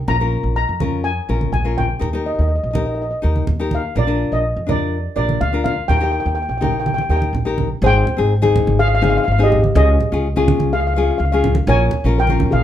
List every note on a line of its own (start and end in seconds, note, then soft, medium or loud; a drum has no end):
0.08 0.38 A#1 medium
0.08 0.15 C#4 medium
0.08 0.15 F4 medium
0.08 0.16 A#4 medium
0.08 0.55 A#5 loud
0.08 low conga medium
0.20 0.56 C#4 medium
0.20 0.57 F4 medium
0.20 0.57 A#4 medium
0.43 0.64 A#1 medium
0.56 1.06 A#5 medium
0.69 1.18 F2 medium
0.80 1.09 C#4 medium
0.80 1.10 F4 medium
0.80 1.10 A#4 medium
0.80 high conga medium
0.80 low conga medium
1.04 1.49 G#5 medium
1.29 1.49 A#1 medium
1.29 1.51 C#4 medium
1.29 1.51 F4 medium
1.29 1.51 A#4 medium
1.41 high conga medium
1.52 1.92 A#1 medium
1.52 1.78 G#5 medium
1.52 low conga medium
1.64 1.87 C#4 medium
1.64 1.87 F4 medium
1.64 1.87 A#4 medium
1.78 2.23 G5 medium
1.78 high conga soft
1.78 low conga medium
1.99 2.31 D#2 medium
1.99 2.08 D#4 medium
1.99 2.08 G4 medium
1.99 2.09 A#4 medium
1.99 low conga medium
2.13 2.50 D#4 medium
2.13 2.50 G4 medium
2.13 2.51 A#4 medium
2.26 2.33 D#5 medium
2.34 2.40 D#5 soft
2.39 2.58 D#2 medium
2.39 2.47 D#5 medium
2.48 2.54 D#5 soft
2.56 2.62 D#5 soft
2.63 3.13 A#1 medium
2.63 2.70 D#5 soft
2.71 3.03 D#4 medium
2.71 3.04 G4 medium
2.71 2.78 D#5 soft
2.75 3.04 A#4 medium
2.75 2.85 D#5 soft
2.75 high conga medium
2.75 low conga medium
2.86 2.93 D#5 soft
2.95 3.01 D#5 soft
3.02 3.08 D#5 soft
3.11 3.17 D#5 soft
3.22 3.43 D#2 medium
3.22 3.44 D#4 medium
3.22 3.44 G4 medium
3.22 3.45 A#4 medium
3.36 high conga medium
3.47 3.87 D#2 medium
3.47 low conga medium
3.60 3.81 D#4 medium
3.60 3.81 G4 medium
3.60 3.82 A#4 medium
3.71 3.98 F5 medium
3.71 high conga medium
3.71 low conga medium
3.95 4.25 A#1 loud
3.95 4.03 D4 medium
3.95 4.03 F4 medium
3.95 4.03 A#4 medium
3.95 4.34 D5 medium
3.95 low conga medium
4.07 4.44 D4 medium
4.07 4.44 F4 medium
4.07 4.44 A#4 medium
4.32 4.52 A#1 medium
4.32 4.70 D#5 medium
4.56 5.06 F2 medium
4.67 4.96 D4 medium
4.67 4.97 F4 medium
4.67 4.97 A#4 medium
4.67 5.14 D5 medium
4.67 high conga medium
4.67 low conga medium
5.16 5.36 A#1 medium
5.16 5.38 D4 medium
5.16 5.38 F4 medium
5.16 5.39 A#4 medium
5.16 5.41 D5 medium
5.29 high conga medium
5.41 5.81 D2 medium
5.41 5.63 F5 medium
5.41 low conga medium
5.53 5.75 D4 medium
5.53 5.75 F4 medium
5.53 5.75 A#4 medium
5.64 5.75 F5 medium
5.64 high conga medium
5.64 low conga medium
5.88 6.19 D#2 medium
5.88 5.96 D#4 medium
5.88 5.97 G4 medium
5.88 5.97 A#4 medium
5.88 5.96 G5 medium
5.88 low conga medium
5.97 6.37 D#4 medium
5.97 6.37 G4 medium
5.97 6.02 G5 medium
6.01 6.37 A#4 medium
6.01 6.10 G5 medium
6.12 6.19 G5 medium
6.20 6.26 G5 medium
6.26 6.45 D#2 medium
6.26 6.34 G5 medium
6.35 6.41 G5 medium
6.42 6.48 G5 soft
6.49 6.99 A#1 medium
6.49 6.56 G5 medium
6.58 6.90 D#4 medium
6.58 6.91 G4 medium
6.58 6.63 G5 soft
6.62 6.91 A#4 medium
6.62 6.71 G5 medium
6.62 high conga medium
6.62 low conga medium
6.72 6.78 G5 medium
6.80 6.85 G5 medium
6.86 6.93 G5 medium
6.86 high conga medium
6.94 7.00 G5 medium
6.98 7.09 G5 medium
6.98 high conga medium
7.09 7.29 D#2 medium
7.09 7.32 D#4 medium
7.09 7.32 G4 medium
7.09 7.32 A#4 medium
7.09 7.15 G5 medium
7.17 7.24 G5 medium
7.22 high conga medium
7.33 7.73 A#1 medium
7.33 low conga medium
7.45 7.67 D#4 medium
7.45 7.68 G4 medium
7.45 7.68 A#4 medium
7.58 high conga medium
7.58 low conga medium
7.82 8.02 G#1 loud
7.82 8.04 C4 medium
7.82 8.04 D#4 medium
7.82 8.05 G#4 medium
7.82 8.76 C5 medium
7.82 low conga medium
7.86 8.77 G5 loud
8.07 low conga medium
8.17 8.58 G#1 medium
8.17 8.32 C4 medium
8.17 8.33 D#4 medium
8.17 8.33 G#4 medium
8.42 8.79 C4 medium
8.42 8.79 D#4 medium
8.42 8.79 G#4 medium
8.42 high conga medium
8.56 high conga medium
8.56 low conga medium
8.67 9.17 G#1 medium
8.67 high conga medium
8.79 8.86 G#4 medium
8.79 8.87 F5 medium
8.88 8.93 F5 medium
8.95 9.02 F5 medium
9.01 9.24 C4 medium
9.01 9.24 D#4 medium
9.01 9.25 G#4 medium
9.01 9.09 F5 medium
9.01 high conga medium
9.10 9.16 F5 medium
9.17 9.23 F5 medium
9.24 9.67 G#1 medium
9.24 9.31 F5 medium
9.32 9.39 F5 medium
9.38 9.61 C4 medium
9.38 9.61 D#4 medium
9.38 9.61 G#4 medium
9.43 9.74 G4 medium
9.43 9.73 D#5 medium
9.52 low conga medium
9.64 high conga medium
9.75 9.95 C#2 loud
9.75 9.97 C#4 medium
9.75 9.97 F4 medium
9.75 10.69 G#4 medium
9.75 9.98 G#4 medium
9.75 10.75 D#5 medium
9.75 low conga medium
10.00 low conga medium
10.12 10.51 C#2 medium
10.12 10.26 C#4 medium
10.12 10.26 F4 medium
10.12 10.27 G#4 medium
10.36 10.72 C#4 medium
10.36 10.72 F4 medium
10.36 10.73 G#4 loud
10.36 high conga medium
10.48 high conga medium
10.48 low conga medium
10.60 11.09 C#2 medium
10.60 high conga medium
10.73 10.80 G#4 medium
10.73 10.79 F5 medium
10.80 10.86 F5 medium
10.87 10.93 F5 medium
10.94 11.18 C#4 medium
10.94 11.18 F4 medium
10.94 11.19 G#4 medium
10.94 11.01 F5 medium
11.03 11.09 F5 medium
11.11 11.17 F5 soft
11.18 11.59 C#2 medium
11.18 11.24 F5 medium
11.25 11.31 F5 medium
11.32 11.54 C#4 medium
11.32 11.54 F4 medium
11.32 11.55 G#4 medium
11.32 11.39 F5 medium
11.44 low conga medium
11.55 high conga medium
11.67 11.87 A#1 loud
11.67 11.90 C#4 medium
11.67 11.90 F4 medium
11.67 11.90 A#4 medium
11.67 12.13 C#5 medium
11.67 12.18 G#5 medium
11.67 low conga medium
11.91 low conga medium
12.04 12.44 A#1 medium
12.04 12.19 C#4 medium
12.04 12.19 F4 medium
12.04 12.20 A#4 medium
12.18 12.47 A#4 medium
12.18 12.48 G5 medium
12.27 12.63 C#4 medium
12.27 12.63 F4 medium
12.27 12.63 A#4 medium
12.27 high conga medium
12.40 high conga medium
12.40 low conga medium
12.51 12.63 A#1 medium
12.51 12.58 G#4 medium
12.51 12.59 F5 medium
12.51 high conga medium